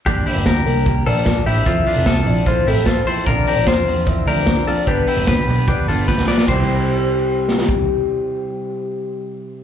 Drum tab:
CC |----------------|----------------|----------------|----------------|
HH |x-o-x-o-x-o-x-o-|x-o-x-o-x-o-x-o-|x-o---o-x-o-x-o-|x-o-x-o-x-o-----|
SD |----o-------o---|----o-------o---|----o-------o---|----o-------oooo|
BD |o---o---o---o---|o---o---o---o---|o---o---o---o---|o---o---o---o---|

CC |x---------------|----------------|
HH |----------------|----------------|
SD |----------oo----|----------------|
BD |o-----------o---|----------------|